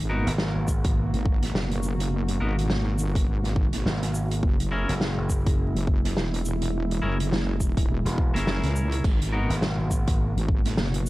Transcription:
0.00 0.24 G#1 loud
0.00 4.39 B2 medium
0.00 4.39 A#3 medium
0.00 4.39 F#4 medium
0.09 0.32 B3 medium
0.09 0.32 D#4 medium
0.09 0.32 F#4 medium
0.09 0.32 A#4 loud
0.27 0.53 G#1 loud
0.27 snare soft
0.27 closed hi-hat medium
0.38 snare loud
0.56 1.11 G#1 loud
0.68 kick medium
0.68 shaker medium
0.84 kick loud
0.84 closed hi-hat medium
1.13 1.52 G#1 medium
1.13 closed hi-hat medium
1.25 kick loud
1.42 snare soft
1.42 closed hi-hat medium
1.54 2.39 F#1 medium
1.54 snare loud
1.71 closed hi-hat medium
1.83 shaker medium
2.00 closed hi-hat medium
2.28 closed hi-hat medium
2.40 3.01 G#1 medium
2.40 2.56 B3 medium
2.40 2.56 D#4 medium
2.40 2.56 F#4 medium
2.40 2.55 A#4 medium
2.59 closed hi-hat medium
2.70 snare loud
2.98 3.26 G1 medium
2.98 shaker medium
3.15 kick loud
3.15 closed hi-hat medium
3.28 3.71 G#1 loud
3.44 snare soft
3.44 closed hi-hat medium
3.56 kick loud
3.73 3.83 G#1 loud
3.73 snare soft
3.73 closed hi-hat medium
3.85 4.41 G#1 loud
3.85 snare loud
4.03 snare soft
4.03 closed hi-hat medium
4.14 shaker medium
4.31 closed hi-hat medium
4.43 4.86 F#1 loud
4.43 9.00 A#2 medium
4.43 9.01 G#3 medium
4.43 9.01 E4 medium
4.43 kick loud
4.60 closed hi-hat medium
4.71 4.93 C#4 medium
4.71 4.93 E4 medium
4.71 4.93 G#4 medium
4.71 4.93 A#4 loud
4.89 5.15 F#1 loud
4.89 snare soft
4.89 closed hi-hat medium
5.01 snare loud
5.17 5.72 F#1 loud
5.30 kick medium
5.30 shaker medium
5.47 kick loud
5.47 closed hi-hat medium
5.75 6.14 F#1 loud
5.75 closed hi-hat medium
5.87 kick loud
6.05 snare soft
6.05 closed hi-hat medium
6.16 7.01 E1 medium
6.16 snare loud
6.34 closed hi-hat medium
6.45 shaker medium
6.62 closed hi-hat medium
6.91 closed hi-hat medium
7.02 7.87 F#1 loud
7.02 7.17 C#4 medium
7.02 7.17 E4 medium
7.02 7.17 G#4 medium
7.02 7.17 A#4 medium
7.20 closed hi-hat medium
7.32 snare loud
7.60 kick medium
7.60 shaker medium
7.77 kick loud
7.77 closed hi-hat medium
7.89 8.03 E1 medium
8.05 8.32 E1 medium
8.05 snare soft
8.05 closed hi-hat medium
8.18 kick loud
8.34 8.61 F#1 loud
8.34 9.03 C#4 medium
8.34 9.03 E4 medium
8.34 9.03 G#4 medium
8.34 9.03 A#4 loud
8.34 snare soft
8.34 closed hi-hat medium
8.47 snare loud
8.63 9.02 C#2 loud
8.63 snare soft
8.63 closed hi-hat medium
8.76 shaker medium
8.92 closed hi-hat medium
9.04 9.47 G#1 loud
9.04 11.09 B2 medium
9.04 11.09 A#3 medium
9.04 11.09 F#4 medium
9.04 kick loud
9.04 crash medium
9.22 closed hi-hat medium
9.32 9.55 B3 medium
9.32 9.55 D#4 medium
9.32 9.55 F#4 medium
9.32 9.55 A#4 loud
9.50 9.76 G#1 loud
9.50 snare soft
9.50 closed hi-hat medium
9.62 snare loud
9.78 10.34 G#1 loud
9.91 kick medium
9.91 shaker medium
10.07 kick loud
10.07 closed hi-hat medium
10.36 10.75 G#1 loud
10.36 closed hi-hat medium
10.48 kick loud
10.65 snare soft
10.65 closed hi-hat medium
10.77 11.09 F#1 medium
10.77 snare loud
10.94 closed hi-hat medium
11.06 shaker medium

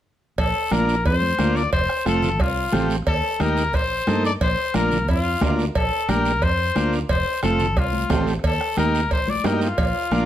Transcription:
0.38 0.52 A#1 medium
0.38 0.74 A4 medium
0.38 bombo low medium
0.38 cowbell loud
0.38 long guiro medium
0.71 1.07 A#1 loud
0.71 0.95 A#3 medium
0.71 0.95 D4 medium
0.71 0.96 F4 medium
0.71 1.06 A#4 loud
0.71 bombo rim medium
0.71 high conga medium
0.71 short guiro medium
0.89 short guiro medium
1.05 1.32 F2 medium
1.05 1.57 C5 loud
1.05 bombo low medium
1.05 cowbell medium
1.05 long guiro medium
1.22 high conga medium
1.39 1.66 D2 medium
1.39 1.62 A#3 medium
1.39 1.63 D4 medium
1.39 1.63 F4 medium
1.39 bombo rim medium
1.39 high conga medium
1.39 short guiro medium
1.56 1.72 D5 loud
1.56 short guiro medium
1.72 1.86 F1 medium
1.72 2.04 C5 loud
1.72 bombo low medium
1.72 cowbell loud
1.72 long guiro medium
1.89 bombo rim medium
2.06 2.39 F1 medium
2.06 2.29 A3 medium
2.06 2.30 C4 medium
2.06 2.30 F4 medium
2.06 2.42 A4 loud
2.06 bombo rim medium
2.06 high conga medium
2.06 short guiro medium
2.22 low conga medium
2.22 short guiro medium
2.39 2.66 C2 medium
2.39 2.91 F4 medium
2.39 bombo low medium
2.39 cowbell medium
2.39 long guiro medium
2.72 3.00 A1 medium
2.72 2.96 A3 medium
2.72 2.96 C4 medium
2.72 2.97 G4 medium
2.72 bombo rim medium
2.72 high conga medium
2.72 low conga medium
2.72 short guiro medium
2.90 short guiro medium
3.06 3.20 D#2 medium
3.06 3.43 A4 loud
3.06 bombo low medium
3.06 cowbell loud
3.06 long guiro medium
3.40 3.73 D#2 medium
3.40 3.63 A#3 medium
3.40 3.64 D#4 medium
3.40 3.64 G4 medium
3.40 3.76 A#4 loud
3.40 bombo rim medium
3.40 high conga medium
3.40 short guiro medium
3.57 short guiro medium
3.73 4.01 A#1 medium
3.73 4.25 C5 loud
3.73 bombo low medium
3.73 cowbell medium
3.73 long guiro medium
4.07 4.34 G2 medium
4.07 4.31 A#3 medium
4.07 4.31 D#4 medium
4.07 4.31 A4 medium
4.07 bombo rim medium
4.07 high conga medium
4.07 short guiro medium
4.25 4.33 D5 medium
4.25 short guiro medium
4.41 4.54 A#1 loud
4.41 4.73 C5 loud
4.41 bombo low medium
4.41 cowbell loud
4.41 long guiro medium
4.74 5.08 A#1 medium
4.74 4.98 A#3 medium
4.74 4.98 D4 medium
4.74 4.98 F4 medium
4.74 5.06 A#4 medium
4.74 bombo rim medium
4.74 high conga medium
4.74 short guiro medium
4.91 low conga medium
4.91 short guiro medium
5.08 5.35 F2 medium
5.08 5.56 F4 medium
5.08 bombo low medium
5.08 cowbell medium
5.08 long guiro medium
5.41 5.68 D2 medium
5.41 5.65 A#3 medium
5.41 5.65 D4 medium
5.41 5.66 F4 medium
5.41 bombo low medium
5.41 bombo rim medium
5.41 high conga medium
5.41 low conga medium
5.41 low timbale medium
5.41 short guiro medium
5.59 short guiro medium
5.75 5.89 A#1 medium
5.75 6.10 A4 medium
5.75 bombo low medium
5.75 cowbell loud
5.75 long guiro medium
6.08 6.42 A#1 medium
6.08 6.32 A#3 medium
6.08 6.32 D4 medium
6.08 6.33 G4 medium
6.08 6.44 A#4 loud
6.08 bombo rim medium
6.08 high conga medium
6.08 short guiro medium
6.25 short guiro medium
6.42 6.69 F2 medium
6.42 6.93 C5 loud
6.42 bombo low medium
6.42 cowbell medium
6.42 long guiro medium
6.75 7.03 D2 medium
6.75 6.99 A#3 medium
6.75 6.99 D4 medium
6.75 7.00 F4 medium
6.75 bombo rim medium
6.75 high conga medium
6.75 short guiro medium
6.93 short guiro medium
7.09 7.23 F1 medium
7.09 7.41 C5 medium
7.09 bombo low medium
7.09 cowbell loud
7.09 long guiro medium
7.43 7.76 F1 loud
7.43 7.66 A3 medium
7.43 7.67 C4 medium
7.43 7.67 F4 medium
7.43 7.80 A4 medium
7.43 bombo rim medium
7.43 high conga medium
7.43 short guiro medium
7.60 low conga medium
7.60 short guiro medium
7.76 8.03 C2 loud
7.76 8.28 F4 medium
7.76 bombo low medium
7.76 cowbell medium
7.76 long guiro medium
7.93 high conga medium
8.10 8.37 A1 medium
8.10 8.34 A3 medium
8.10 8.34 C4 medium
8.10 8.34 G4 medium
8.10 bombo low medium
8.10 bombo rim medium
8.10 high conga medium
8.10 low conga medium
8.10 low timbale medium
8.10 short guiro medium
8.27 short guiro medium
8.44 8.57 D#2 medium
8.44 8.76 A4 medium
8.44 bombo low medium
8.44 cowbell loud
8.44 long guiro medium
8.61 bombo rim medium
8.77 9.11 D#2 loud
8.77 9.01 A#3 medium
8.77 9.01 D#4 medium
8.77 9.01 G4 medium
8.77 9.09 A#4 medium
8.77 bombo rim medium
8.77 high conga medium
8.77 short guiro medium
8.95 short guiro medium
9.11 9.38 A#1 loud
9.11 9.31 C5 medium
9.11 bombo low medium
9.11 cowbell medium
9.11 long guiro medium
9.28 9.48 D5 medium
9.28 high conga medium
9.44 9.71 G2 medium
9.44 9.68 A#3 medium
9.44 9.68 D#4 medium
9.44 9.68 G4 medium
9.44 9.62 A#4 medium
9.44 bombo rim medium
9.44 high conga medium
9.44 low timbale medium
9.44 short guiro medium
9.61 10.25 F4 medium
9.61 short guiro medium
9.78 9.91 A#1 medium
9.78 bombo low medium
9.78 cowbell loud
9.78 long guiro medium
10.11 10.25 A#1 medium
10.11 10.25 A#3 medium
10.11 10.25 D4 medium
10.11 10.25 F4 medium
10.11 bombo rim medium
10.11 high conga medium
10.11 short guiro medium

